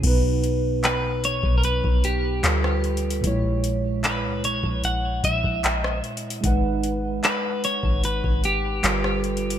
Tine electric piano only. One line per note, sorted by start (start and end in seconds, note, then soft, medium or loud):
0.01 2.38 B2 medium
0.01 2.39 B3 medium
0.05 2.40 D#4 medium
0.05 2.41 B4 medium
2.42 3.23 G3 medium
2.42 3.23 F4 medium
2.42 3.24 A4 medium
2.42 3.25 B4 medium
3.21 6.38 A#2 medium
3.21 6.39 G#3 medium
3.25 6.40 E4 medium
3.25 6.41 C#5 medium
6.41 8.78 G#3 medium
6.41 8.79 D#4 medium
6.45 8.81 B4 medium
6.45 8.80 F#5 medium
8.82 9.59 G3 medium
8.82 9.59 F4 medium
8.82 9.59 A4 medium
8.82 8.91 A#4 medium
8.92 9.59 B4 medium